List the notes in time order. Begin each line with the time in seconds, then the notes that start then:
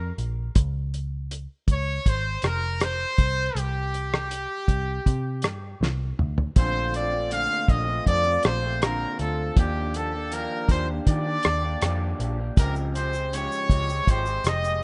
Already playing: F2 A#4
0.18 A#1, closed hi-hat
0.55 C#2, kick, closed hi-hat
0.94 closed hi-hat
1.31 closed hi-hat
1.68 C#2, kick, closed hi-hat
1.72 C#5
2.06 G#1 C5, kick, closed hi-hat
2.42 F1 A#4, cross-stick, closed hi-hat
2.80 C5, cross-stick, closed hi-hat
3.18 C2, kick, closed hi-hat
3.55 C2 G4, closed hi-hat
3.94 closed hi-hat
4.14 cross-stick
4.31 closed hi-hat
4.68 C2, kick, closed hi-hat
5.06 C3, kick, closed hi-hat
5.42 G2, cross-stick, closed hi-hat
5.81 C2, snare
6.19 D2, mid tom
6.38 floor tom
6.56 A#1 A#2 D3 A3 C4 F4 C5, kick, closed hi-hat
6.93 D3 A3 C4 F4 D5, closed hi-hat
7.10 A3 C4 F4
7.30 A#2 D3 A3 C4 F4 F5, closed hi-hat
7.68 A#1 D3 A3 C4 F4 D#5, kick, closed hi-hat
7.86 A3 C4 F4
8.05 F2 D3 A3 C4 F4 D5, kick, closed hi-hat
8.24 A3 C4 F4
8.43 A#1 C5, cross-stick, closed hi-hat
8.62 A3 C4 F4
8.81 A#2 D3 C4 F4 A#4, cross-stick, closed hi-hat
9.18 D2 D3 A3 C4 F4 A4, closed hi-hat
9.55 D#2 D#3 F3 A#3 D4 G4, kick, closed hi-hat
9.94 F3 A#3 D4 G4 A4, closed hi-hat
10.12 A#3 D4 G4
10.30 D#3 F3 A#3 D4 G4 A#4, closed hi-hat
10.68 D#2 F3 A#3 D4 G4 C5, kick, closed hi-hat
10.87 A#3 D4 G4
11.05 D#3 F3 A#3 D4 G4 D5, kick, closed hi-hat
11.24 A#3 D4 G4
11.43 D#2, cross-stick, closed hi-hat
11.62 A#3 D4 G4
11.81 F2 D#3 F3 A#3 D4 G4, cross-stick, closed hi-hat
12.18 A#1 F3 A#3 D4 G4, closed hi-hat
12.38 A#3 D4 G4
12.57 C#2 C#3 F3 G#3 C4 G4 A#4, kick, closed hi-hat, shaker
12.75 shaker
12.95 F3 G#3 C4 G4 C5, closed hi-hat, shaker
13.12 G#3 C4 G4, shaker
13.32 C#3 F3 G#3 G4 C#5, closed hi-hat, shaker
13.52 shaker
13.69 C#2 F3 G#3 C4 G4, kick, closed hi-hat, shaker
13.87 G#3 C4 G4, shaker
14.05 G#1 F3 G#3 C4 G4, kick, closed hi-hat, shaker
14.10 C5
14.25 G#3 C4 G4, shaker
14.44 F1 D#5, cross-stick, closed hi-hat, shaker
14.62 G#3 C4 G4, shaker